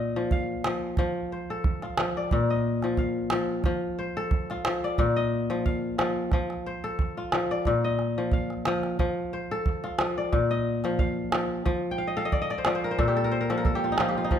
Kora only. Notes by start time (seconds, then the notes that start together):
Already playing: A#2 F4 D#5
0.16 F3
0.32 F5
0.65 F3
0.99 F3
1.32 C5
1.50 A4
1.83 F4
1.98 F3
2.17 D5
2.32 A#2
2.50 D#5
2.84 F3
2.98 F5
3.32 F3
3.65 F3
3.99 C5
4.17 A4
4.51 F4
4.65 F3
4.84 D5
4.99 A#2
5.16 D#5
5.50 F3
5.66 F5
5.98 F3
6.33 F3
6.66 C5
6.84 A4
7.17 F4
7.33 F3
7.51 D5
7.67 A#2
7.84 D#5
8.18 F3
8.33 F5
8.67 F3
9.00 F3
9.33 C5
9.51 A4
9.84 F4
9.98 F3
10.18 D5
10.32 A#2
10.51 D#5
10.84 F3
10.99 F5
11.32 F3
11.65 F3
11.91 G5
11.98 F5
12.07 D#5
12.17 A4 F5
12.25 D#5
12.32 D5
12.42 D#5
12.51 D5
12.58 C5
12.66 F3 D5
12.75 C5
12.84 A#4
12.91 C5
12.99 A#2 A4
13.08 G4
13.17 A4
13.24 A#4
13.32 C5
13.41 A#4
13.50 F3 A4
13.58 A#4
13.65 A4
13.75 G4
13.84 F4
13.92 D#4
14.00 F3 F4
14.09 G4
14.18 F4
14.24 D#4
14.31 F3